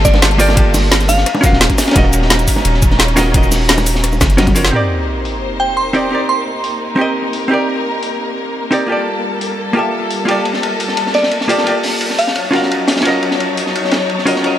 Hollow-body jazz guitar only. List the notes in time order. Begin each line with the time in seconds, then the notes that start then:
Already playing: A#3 F4 G4 A4 D5
0.38 A#3 F4 G4 A4 D5
0.54 A#3 F4 G4
0.58 A4 D5
1.41 C#4 F4 F#4
1.45 A#4 F5
1.93 C#4 F4 F#4
1.97 A#4 D#5
3.16 C#4 F4 F#4 A#4 D#5
3.32 C#4 F4 F#4
3.36 A#4 D#5
4.37 C#4 F4 F#4 A#4 D#5
4.55 C#4 F4 F#4 A#4 C#5
4.71 C4 D#4 G4
4.75 A#4 D5
5.93 C4 D#4 G4 A#4 D5
6.09 C4 D#4 G4
6.13 A#4 D5
6.96 C4 D#4 G4
7.00 A#4 D#5
7.48 C4 D#4 G4
7.52 A#4 D5
8.71 C4 D#4 G4 A#4 D5
8.87 A#3 F4 G4
8.91 A4 D5
9.73 A#3 F4 G4
9.77 A4 E5
10.25 A#3 F4 G4
10.29 A4 D5
11.48 A#3 F4 G4 A4 D5
11.64 A#3 F4 G4
11.68 A4 D5
12.51 C#4 F4 F#4
12.55 A#4 F5
13.03 C#4 F4 F#4
13.07 A#4 D#5
14.26 C#4 F4 F#4 A#4 D#5
14.41 C#4 F4 F#4
14.45 A#4 D#5